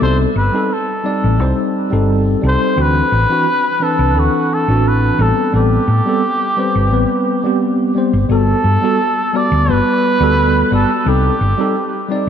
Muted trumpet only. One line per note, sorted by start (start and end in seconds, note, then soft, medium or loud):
0.03 0.18 C5 medium
0.38 0.74 B4 medium
0.73 1.76 A4 medium
2.47 2.83 C5 loud
2.82 3.85 B4 loud
3.83 4.21 A4 medium
4.19 4.55 F#4 medium
4.54 4.89 A4 medium
4.88 5.23 B4 medium
5.22 5.55 A4 loud
5.56 7.58 G4 medium
8.34 9.38 A4 loud
9.36 9.72 D5 loud
9.71 10.73 B4 loud
10.74 11.10 A4 medium
11.08 12.11 G4 medium